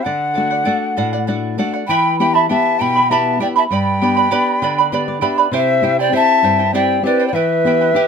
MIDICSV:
0, 0, Header, 1, 5, 480
1, 0, Start_track
1, 0, Key_signature, 1, "minor"
1, 0, Tempo, 607287
1, 51, Time_signature, 6, 3, 24, 8
1, 6383, End_track
2, 0, Start_track
2, 0, Title_t, "Quena"
2, 0, Program_c, 0, 77
2, 23, Note_on_c, 0, 78, 80
2, 999, Note_off_c, 0, 78, 0
2, 1481, Note_on_c, 0, 83, 91
2, 1711, Note_off_c, 0, 83, 0
2, 1737, Note_on_c, 0, 83, 83
2, 1850, Note_on_c, 0, 81, 75
2, 1862, Note_off_c, 0, 83, 0
2, 1968, Note_off_c, 0, 81, 0
2, 1973, Note_on_c, 0, 81, 86
2, 2224, Note_on_c, 0, 83, 93
2, 2236, Note_off_c, 0, 81, 0
2, 2463, Note_on_c, 0, 81, 78
2, 2475, Note_off_c, 0, 83, 0
2, 2699, Note_off_c, 0, 81, 0
2, 2706, Note_on_c, 0, 79, 70
2, 2753, Note_off_c, 0, 79, 0
2, 2824, Note_on_c, 0, 81, 71
2, 2871, Note_off_c, 0, 81, 0
2, 2962, Note_on_c, 0, 83, 87
2, 3877, Note_off_c, 0, 83, 0
2, 4397, Note_on_c, 0, 76, 88
2, 4721, Note_off_c, 0, 76, 0
2, 4744, Note_on_c, 0, 79, 80
2, 4851, Note_off_c, 0, 79, 0
2, 4872, Note_on_c, 0, 81, 96
2, 5310, Note_off_c, 0, 81, 0
2, 5335, Note_on_c, 0, 79, 82
2, 5557, Note_off_c, 0, 79, 0
2, 5573, Note_on_c, 0, 74, 72
2, 5737, Note_off_c, 0, 74, 0
2, 5742, Note_on_c, 0, 79, 52
2, 5802, Note_on_c, 0, 76, 83
2, 5814, Note_off_c, 0, 79, 0
2, 6383, Note_off_c, 0, 76, 0
2, 6383, End_track
3, 0, Start_track
3, 0, Title_t, "Pan flute"
3, 0, Program_c, 1, 75
3, 1482, Note_on_c, 1, 79, 79
3, 1711, Note_off_c, 1, 79, 0
3, 1740, Note_on_c, 1, 79, 69
3, 1856, Note_on_c, 1, 76, 71
3, 1868, Note_off_c, 1, 79, 0
3, 1969, Note_off_c, 1, 76, 0
3, 1974, Note_on_c, 1, 76, 69
3, 2209, Note_on_c, 1, 79, 74
3, 2220, Note_off_c, 1, 76, 0
3, 2459, Note_on_c, 1, 76, 66
3, 2471, Note_off_c, 1, 79, 0
3, 2694, Note_off_c, 1, 76, 0
3, 2699, Note_on_c, 1, 74, 63
3, 2746, Note_off_c, 1, 74, 0
3, 2829, Note_on_c, 1, 76, 61
3, 2876, Note_off_c, 1, 76, 0
3, 2935, Note_on_c, 1, 79, 71
3, 3863, Note_off_c, 1, 79, 0
3, 4396, Note_on_c, 1, 72, 71
3, 4720, Note_off_c, 1, 72, 0
3, 4739, Note_on_c, 1, 74, 76
3, 4848, Note_off_c, 1, 74, 0
3, 4864, Note_on_c, 1, 76, 84
3, 5307, Note_off_c, 1, 76, 0
3, 5329, Note_on_c, 1, 74, 72
3, 5554, Note_off_c, 1, 74, 0
3, 5575, Note_on_c, 1, 71, 65
3, 5745, Note_off_c, 1, 71, 0
3, 5751, Note_on_c, 1, 74, 46
3, 5801, Note_on_c, 1, 71, 69
3, 5813, Note_off_c, 1, 74, 0
3, 6383, Note_off_c, 1, 71, 0
3, 6383, End_track
4, 0, Start_track
4, 0, Title_t, "Charango"
4, 0, Program_c, 2, 24
4, 35, Note_on_c, 2, 69, 52
4, 46, Note_on_c, 2, 74, 54
4, 49, Note_on_c, 2, 78, 59
4, 259, Note_off_c, 2, 69, 0
4, 268, Note_off_c, 2, 74, 0
4, 269, Note_on_c, 2, 69, 50
4, 274, Note_off_c, 2, 78, 0
4, 278, Note_on_c, 2, 74, 54
4, 284, Note_on_c, 2, 78, 55
4, 390, Note_off_c, 2, 78, 0
4, 400, Note_on_c, 2, 78, 48
4, 401, Note_off_c, 2, 69, 0
4, 403, Note_off_c, 2, 74, 0
4, 412, Note_on_c, 2, 74, 36
4, 508, Note_off_c, 2, 74, 0
4, 513, Note_on_c, 2, 69, 69
4, 515, Note_off_c, 2, 78, 0
4, 518, Note_on_c, 2, 74, 68
4, 524, Note_on_c, 2, 78, 70
4, 755, Note_off_c, 2, 69, 0
4, 761, Note_off_c, 2, 74, 0
4, 765, Note_on_c, 2, 69, 63
4, 766, Note_off_c, 2, 78, 0
4, 770, Note_on_c, 2, 74, 64
4, 776, Note_on_c, 2, 78, 69
4, 883, Note_off_c, 2, 78, 0
4, 889, Note_off_c, 2, 69, 0
4, 890, Note_off_c, 2, 74, 0
4, 892, Note_on_c, 2, 78, 56
4, 899, Note_on_c, 2, 74, 43
4, 1002, Note_off_c, 2, 74, 0
4, 1005, Note_on_c, 2, 69, 55
4, 1006, Note_off_c, 2, 78, 0
4, 1011, Note_on_c, 2, 74, 60
4, 1016, Note_on_c, 2, 78, 68
4, 1239, Note_off_c, 2, 69, 0
4, 1243, Note_off_c, 2, 74, 0
4, 1249, Note_on_c, 2, 69, 56
4, 1250, Note_off_c, 2, 78, 0
4, 1252, Note_on_c, 2, 74, 62
4, 1259, Note_on_c, 2, 78, 69
4, 1362, Note_off_c, 2, 78, 0
4, 1371, Note_off_c, 2, 69, 0
4, 1372, Note_on_c, 2, 78, 52
4, 1373, Note_off_c, 2, 74, 0
4, 1387, Note_on_c, 2, 74, 37
4, 1493, Note_off_c, 2, 78, 0
4, 1500, Note_off_c, 2, 74, 0
4, 1500, Note_on_c, 2, 79, 70
4, 1501, Note_on_c, 2, 71, 68
4, 1502, Note_on_c, 2, 64, 67
4, 1507, Note_on_c, 2, 76, 74
4, 1507, Note_on_c, 2, 83, 74
4, 1730, Note_off_c, 2, 79, 0
4, 1737, Note_off_c, 2, 76, 0
4, 1738, Note_off_c, 2, 71, 0
4, 1739, Note_off_c, 2, 64, 0
4, 1740, Note_on_c, 2, 79, 52
4, 1741, Note_off_c, 2, 83, 0
4, 1747, Note_on_c, 2, 64, 49
4, 1747, Note_on_c, 2, 76, 54
4, 1750, Note_on_c, 2, 83, 61
4, 1848, Note_off_c, 2, 83, 0
4, 1851, Note_off_c, 2, 76, 0
4, 1855, Note_off_c, 2, 64, 0
4, 1857, Note_off_c, 2, 79, 0
4, 1857, Note_on_c, 2, 83, 44
4, 1861, Note_on_c, 2, 76, 41
4, 1864, Note_on_c, 2, 64, 38
4, 1964, Note_off_c, 2, 64, 0
4, 1971, Note_off_c, 2, 76, 0
4, 1971, Note_on_c, 2, 79, 52
4, 1973, Note_on_c, 2, 64, 58
4, 1976, Note_off_c, 2, 83, 0
4, 1980, Note_on_c, 2, 76, 56
4, 1985, Note_on_c, 2, 83, 60
4, 2197, Note_off_c, 2, 79, 0
4, 2205, Note_off_c, 2, 64, 0
4, 2206, Note_on_c, 2, 79, 51
4, 2211, Note_off_c, 2, 76, 0
4, 2212, Note_off_c, 2, 83, 0
4, 2214, Note_on_c, 2, 64, 56
4, 2221, Note_on_c, 2, 76, 59
4, 2222, Note_on_c, 2, 83, 58
4, 2328, Note_off_c, 2, 83, 0
4, 2331, Note_off_c, 2, 79, 0
4, 2334, Note_off_c, 2, 76, 0
4, 2335, Note_off_c, 2, 64, 0
4, 2338, Note_on_c, 2, 83, 44
4, 2343, Note_on_c, 2, 76, 44
4, 2347, Note_on_c, 2, 64, 39
4, 2454, Note_off_c, 2, 76, 0
4, 2455, Note_off_c, 2, 64, 0
4, 2456, Note_off_c, 2, 83, 0
4, 2459, Note_on_c, 2, 71, 67
4, 2459, Note_on_c, 2, 79, 64
4, 2463, Note_on_c, 2, 76, 68
4, 2465, Note_on_c, 2, 64, 69
4, 2469, Note_on_c, 2, 83, 73
4, 2681, Note_off_c, 2, 79, 0
4, 2686, Note_off_c, 2, 64, 0
4, 2688, Note_off_c, 2, 76, 0
4, 2690, Note_on_c, 2, 79, 54
4, 2691, Note_off_c, 2, 83, 0
4, 2695, Note_on_c, 2, 64, 54
4, 2697, Note_off_c, 2, 71, 0
4, 2698, Note_on_c, 2, 76, 58
4, 2701, Note_on_c, 2, 83, 63
4, 2802, Note_off_c, 2, 83, 0
4, 2808, Note_off_c, 2, 76, 0
4, 2811, Note_on_c, 2, 83, 50
4, 2812, Note_off_c, 2, 64, 0
4, 2813, Note_off_c, 2, 79, 0
4, 2817, Note_on_c, 2, 76, 49
4, 2821, Note_on_c, 2, 64, 42
4, 2933, Note_off_c, 2, 83, 0
4, 2936, Note_off_c, 2, 64, 0
4, 2936, Note_off_c, 2, 76, 0
4, 2936, Note_on_c, 2, 79, 52
4, 2939, Note_on_c, 2, 71, 59
4, 2943, Note_on_c, 2, 74, 55
4, 2952, Note_on_c, 2, 83, 55
4, 3163, Note_off_c, 2, 79, 0
4, 3166, Note_off_c, 2, 71, 0
4, 3173, Note_on_c, 2, 79, 52
4, 3175, Note_off_c, 2, 74, 0
4, 3175, Note_on_c, 2, 71, 52
4, 3179, Note_off_c, 2, 83, 0
4, 3185, Note_on_c, 2, 74, 55
4, 3188, Note_on_c, 2, 83, 57
4, 3283, Note_off_c, 2, 83, 0
4, 3290, Note_off_c, 2, 74, 0
4, 3293, Note_on_c, 2, 83, 50
4, 3294, Note_off_c, 2, 79, 0
4, 3295, Note_off_c, 2, 71, 0
4, 3300, Note_on_c, 2, 74, 43
4, 3306, Note_on_c, 2, 71, 37
4, 3402, Note_off_c, 2, 71, 0
4, 3404, Note_off_c, 2, 83, 0
4, 3406, Note_off_c, 2, 74, 0
4, 3407, Note_on_c, 2, 67, 72
4, 3411, Note_on_c, 2, 71, 73
4, 3412, Note_on_c, 2, 79, 75
4, 3414, Note_on_c, 2, 83, 71
4, 3415, Note_on_c, 2, 74, 82
4, 3644, Note_off_c, 2, 79, 0
4, 3651, Note_off_c, 2, 67, 0
4, 3652, Note_off_c, 2, 71, 0
4, 3654, Note_off_c, 2, 83, 0
4, 3654, Note_on_c, 2, 79, 62
4, 3655, Note_off_c, 2, 74, 0
4, 3661, Note_on_c, 2, 71, 60
4, 3664, Note_on_c, 2, 74, 66
4, 3666, Note_on_c, 2, 83, 69
4, 3771, Note_off_c, 2, 83, 0
4, 3774, Note_off_c, 2, 79, 0
4, 3778, Note_off_c, 2, 71, 0
4, 3780, Note_off_c, 2, 74, 0
4, 3781, Note_on_c, 2, 83, 54
4, 3793, Note_on_c, 2, 71, 41
4, 3793, Note_on_c, 2, 74, 48
4, 3889, Note_off_c, 2, 71, 0
4, 3891, Note_on_c, 2, 79, 55
4, 3892, Note_off_c, 2, 83, 0
4, 3893, Note_off_c, 2, 74, 0
4, 3898, Note_on_c, 2, 71, 59
4, 3901, Note_on_c, 2, 83, 65
4, 3902, Note_on_c, 2, 74, 64
4, 4110, Note_off_c, 2, 79, 0
4, 4115, Note_off_c, 2, 71, 0
4, 4118, Note_off_c, 2, 83, 0
4, 4119, Note_off_c, 2, 74, 0
4, 4120, Note_on_c, 2, 79, 60
4, 4124, Note_on_c, 2, 71, 66
4, 4128, Note_on_c, 2, 83, 69
4, 4129, Note_on_c, 2, 74, 72
4, 4241, Note_off_c, 2, 83, 0
4, 4247, Note_off_c, 2, 79, 0
4, 4248, Note_off_c, 2, 74, 0
4, 4249, Note_off_c, 2, 71, 0
4, 4251, Note_on_c, 2, 83, 52
4, 4257, Note_on_c, 2, 74, 47
4, 4264, Note_on_c, 2, 71, 46
4, 4370, Note_off_c, 2, 71, 0
4, 4370, Note_on_c, 2, 67, 76
4, 4372, Note_off_c, 2, 74, 0
4, 4372, Note_on_c, 2, 76, 69
4, 4373, Note_off_c, 2, 83, 0
4, 4373, Note_on_c, 2, 64, 71
4, 4375, Note_on_c, 2, 72, 76
4, 4379, Note_on_c, 2, 79, 73
4, 4598, Note_off_c, 2, 76, 0
4, 4600, Note_off_c, 2, 64, 0
4, 4604, Note_off_c, 2, 72, 0
4, 4604, Note_off_c, 2, 79, 0
4, 4607, Note_on_c, 2, 76, 49
4, 4610, Note_on_c, 2, 64, 62
4, 4612, Note_off_c, 2, 67, 0
4, 4613, Note_on_c, 2, 79, 57
4, 4614, Note_on_c, 2, 72, 57
4, 4726, Note_off_c, 2, 79, 0
4, 4731, Note_off_c, 2, 72, 0
4, 4731, Note_off_c, 2, 76, 0
4, 4732, Note_off_c, 2, 64, 0
4, 4736, Note_on_c, 2, 79, 44
4, 4741, Note_on_c, 2, 72, 45
4, 4744, Note_on_c, 2, 64, 38
4, 4838, Note_off_c, 2, 64, 0
4, 4839, Note_off_c, 2, 72, 0
4, 4844, Note_off_c, 2, 79, 0
4, 4845, Note_on_c, 2, 76, 56
4, 4848, Note_on_c, 2, 64, 57
4, 4849, Note_on_c, 2, 72, 59
4, 4854, Note_on_c, 2, 79, 61
4, 5076, Note_off_c, 2, 76, 0
4, 5081, Note_off_c, 2, 64, 0
4, 5085, Note_off_c, 2, 72, 0
4, 5086, Note_on_c, 2, 76, 60
4, 5090, Note_on_c, 2, 64, 58
4, 5091, Note_off_c, 2, 79, 0
4, 5094, Note_on_c, 2, 72, 55
4, 5101, Note_on_c, 2, 79, 61
4, 5199, Note_off_c, 2, 79, 0
4, 5202, Note_off_c, 2, 72, 0
4, 5206, Note_off_c, 2, 64, 0
4, 5208, Note_on_c, 2, 79, 50
4, 5209, Note_off_c, 2, 76, 0
4, 5211, Note_on_c, 2, 72, 44
4, 5215, Note_on_c, 2, 64, 42
4, 5322, Note_off_c, 2, 64, 0
4, 5325, Note_off_c, 2, 72, 0
4, 5330, Note_off_c, 2, 79, 0
4, 5332, Note_on_c, 2, 64, 71
4, 5333, Note_on_c, 2, 67, 71
4, 5335, Note_on_c, 2, 72, 74
4, 5336, Note_on_c, 2, 76, 75
4, 5340, Note_on_c, 2, 79, 70
4, 5567, Note_off_c, 2, 76, 0
4, 5572, Note_off_c, 2, 64, 0
4, 5572, Note_off_c, 2, 67, 0
4, 5573, Note_off_c, 2, 72, 0
4, 5576, Note_off_c, 2, 79, 0
4, 5576, Note_on_c, 2, 76, 55
4, 5584, Note_on_c, 2, 72, 58
4, 5585, Note_on_c, 2, 64, 52
4, 5587, Note_on_c, 2, 79, 68
4, 5678, Note_off_c, 2, 79, 0
4, 5683, Note_off_c, 2, 72, 0
4, 5687, Note_on_c, 2, 79, 56
4, 5689, Note_off_c, 2, 64, 0
4, 5692, Note_on_c, 2, 72, 44
4, 5694, Note_off_c, 2, 76, 0
4, 5699, Note_on_c, 2, 64, 41
4, 5802, Note_off_c, 2, 64, 0
4, 5806, Note_off_c, 2, 79, 0
4, 5808, Note_on_c, 2, 76, 54
4, 5812, Note_off_c, 2, 72, 0
4, 5812, Note_on_c, 2, 64, 52
4, 5815, Note_on_c, 2, 79, 56
4, 5816, Note_on_c, 2, 71, 55
4, 6044, Note_off_c, 2, 76, 0
4, 6049, Note_off_c, 2, 64, 0
4, 6053, Note_off_c, 2, 71, 0
4, 6053, Note_off_c, 2, 79, 0
4, 6053, Note_on_c, 2, 76, 52
4, 6058, Note_on_c, 2, 64, 59
4, 6062, Note_on_c, 2, 71, 57
4, 6064, Note_on_c, 2, 79, 59
4, 6163, Note_off_c, 2, 79, 0
4, 6169, Note_off_c, 2, 71, 0
4, 6172, Note_off_c, 2, 76, 0
4, 6172, Note_on_c, 2, 79, 44
4, 6174, Note_off_c, 2, 64, 0
4, 6178, Note_on_c, 2, 71, 42
4, 6183, Note_on_c, 2, 64, 38
4, 6282, Note_off_c, 2, 64, 0
4, 6284, Note_off_c, 2, 71, 0
4, 6284, Note_off_c, 2, 79, 0
4, 6290, Note_on_c, 2, 67, 66
4, 6292, Note_on_c, 2, 64, 77
4, 6293, Note_on_c, 2, 71, 74
4, 6293, Note_on_c, 2, 76, 68
4, 6294, Note_on_c, 2, 79, 73
4, 6383, Note_off_c, 2, 64, 0
4, 6383, Note_off_c, 2, 67, 0
4, 6383, Note_off_c, 2, 71, 0
4, 6383, Note_off_c, 2, 76, 0
4, 6383, Note_off_c, 2, 79, 0
4, 6383, End_track
5, 0, Start_track
5, 0, Title_t, "Nylon-string guitar"
5, 0, Program_c, 3, 24
5, 47, Note_on_c, 3, 50, 64
5, 293, Note_on_c, 3, 57, 45
5, 295, Note_on_c, 3, 62, 43
5, 297, Note_on_c, 3, 66, 49
5, 516, Note_off_c, 3, 50, 0
5, 516, Note_off_c, 3, 57, 0
5, 518, Note_off_c, 3, 62, 0
5, 523, Note_off_c, 3, 66, 0
5, 525, Note_on_c, 3, 57, 45
5, 530, Note_on_c, 3, 62, 40
5, 532, Note_on_c, 3, 66, 51
5, 772, Note_on_c, 3, 45, 60
5, 913, Note_off_c, 3, 57, 0
5, 914, Note_off_c, 3, 62, 0
5, 917, Note_off_c, 3, 66, 0
5, 1013, Note_on_c, 3, 57, 39
5, 1017, Note_on_c, 3, 62, 38
5, 1017, Note_on_c, 3, 66, 46
5, 1239, Note_off_c, 3, 45, 0
5, 1244, Note_off_c, 3, 57, 0
5, 1245, Note_off_c, 3, 62, 0
5, 1251, Note_off_c, 3, 66, 0
5, 1252, Note_on_c, 3, 57, 47
5, 1256, Note_on_c, 3, 62, 41
5, 1260, Note_on_c, 3, 66, 53
5, 1446, Note_off_c, 3, 57, 0
5, 1447, Note_off_c, 3, 62, 0
5, 1450, Note_off_c, 3, 66, 0
5, 1494, Note_on_c, 3, 52, 66
5, 1736, Note_on_c, 3, 59, 45
5, 1740, Note_on_c, 3, 67, 49
5, 1744, Note_on_c, 3, 64, 42
5, 1960, Note_off_c, 3, 52, 0
5, 1966, Note_off_c, 3, 59, 0
5, 1969, Note_off_c, 3, 64, 0
5, 1973, Note_off_c, 3, 67, 0
5, 1975, Note_on_c, 3, 59, 45
5, 1979, Note_on_c, 3, 64, 39
5, 1982, Note_on_c, 3, 67, 51
5, 2219, Note_on_c, 3, 47, 62
5, 2359, Note_off_c, 3, 59, 0
5, 2361, Note_off_c, 3, 64, 0
5, 2364, Note_off_c, 3, 67, 0
5, 2452, Note_on_c, 3, 59, 39
5, 2456, Note_on_c, 3, 64, 36
5, 2458, Note_on_c, 3, 67, 44
5, 2674, Note_off_c, 3, 59, 0
5, 2676, Note_off_c, 3, 64, 0
5, 2681, Note_off_c, 3, 67, 0
5, 2683, Note_off_c, 3, 47, 0
5, 2683, Note_on_c, 3, 59, 45
5, 2687, Note_on_c, 3, 64, 42
5, 2690, Note_on_c, 3, 67, 55
5, 2880, Note_off_c, 3, 59, 0
5, 2881, Note_off_c, 3, 64, 0
5, 2884, Note_off_c, 3, 67, 0
5, 2929, Note_on_c, 3, 43, 65
5, 3176, Note_on_c, 3, 59, 45
5, 3177, Note_on_c, 3, 62, 42
5, 3180, Note_on_c, 3, 67, 52
5, 3398, Note_off_c, 3, 43, 0
5, 3401, Note_off_c, 3, 59, 0
5, 3402, Note_off_c, 3, 62, 0
5, 3406, Note_off_c, 3, 67, 0
5, 3409, Note_on_c, 3, 59, 45
5, 3414, Note_on_c, 3, 62, 41
5, 3415, Note_on_c, 3, 67, 49
5, 3650, Note_on_c, 3, 50, 64
5, 3796, Note_off_c, 3, 59, 0
5, 3797, Note_off_c, 3, 62, 0
5, 3799, Note_off_c, 3, 67, 0
5, 3890, Note_on_c, 3, 59, 42
5, 3892, Note_on_c, 3, 62, 38
5, 3893, Note_on_c, 3, 71, 57
5, 3898, Note_on_c, 3, 67, 48
5, 4006, Note_off_c, 3, 71, 0
5, 4015, Note_on_c, 3, 74, 59
5, 4112, Note_off_c, 3, 59, 0
5, 4118, Note_off_c, 3, 50, 0
5, 4118, Note_off_c, 3, 62, 0
5, 4118, Note_off_c, 3, 67, 0
5, 4121, Note_on_c, 3, 59, 48
5, 4123, Note_off_c, 3, 74, 0
5, 4126, Note_on_c, 3, 76, 67
5, 4127, Note_on_c, 3, 62, 43
5, 4128, Note_on_c, 3, 67, 51
5, 4318, Note_off_c, 3, 59, 0
5, 4322, Note_off_c, 3, 62, 0
5, 4322, Note_off_c, 3, 67, 0
5, 4352, Note_off_c, 3, 76, 0
5, 4359, Note_on_c, 3, 48, 61
5, 4599, Note_on_c, 3, 60, 47
5, 4606, Note_on_c, 3, 64, 42
5, 4606, Note_on_c, 3, 67, 51
5, 4827, Note_off_c, 3, 60, 0
5, 4831, Note_off_c, 3, 48, 0
5, 4832, Note_off_c, 3, 64, 0
5, 4833, Note_off_c, 3, 67, 0
5, 4836, Note_on_c, 3, 60, 46
5, 4842, Note_on_c, 3, 67, 52
5, 4844, Note_on_c, 3, 64, 44
5, 5079, Note_on_c, 3, 43, 65
5, 5227, Note_off_c, 3, 60, 0
5, 5230, Note_off_c, 3, 64, 0
5, 5231, Note_off_c, 3, 67, 0
5, 5320, Note_on_c, 3, 60, 44
5, 5324, Note_on_c, 3, 64, 41
5, 5328, Note_on_c, 3, 67, 50
5, 5547, Note_off_c, 3, 60, 0
5, 5549, Note_off_c, 3, 64, 0
5, 5551, Note_off_c, 3, 43, 0
5, 5552, Note_off_c, 3, 67, 0
5, 5556, Note_on_c, 3, 60, 47
5, 5560, Note_on_c, 3, 64, 44
5, 5561, Note_on_c, 3, 67, 53
5, 5754, Note_off_c, 3, 60, 0
5, 5756, Note_off_c, 3, 64, 0
5, 5757, Note_off_c, 3, 67, 0
5, 5792, Note_on_c, 3, 52, 67
5, 6042, Note_on_c, 3, 59, 46
5, 6044, Note_on_c, 3, 64, 39
5, 6049, Note_on_c, 3, 67, 50
5, 6266, Note_off_c, 3, 52, 0
5, 6268, Note_off_c, 3, 59, 0
5, 6268, Note_off_c, 3, 64, 0
5, 6273, Note_off_c, 3, 67, 0
5, 6276, Note_on_c, 3, 59, 44
5, 6280, Note_on_c, 3, 64, 39
5, 6282, Note_on_c, 3, 67, 51
5, 6383, Note_off_c, 3, 59, 0
5, 6383, Note_off_c, 3, 64, 0
5, 6383, Note_off_c, 3, 67, 0
5, 6383, End_track
0, 0, End_of_file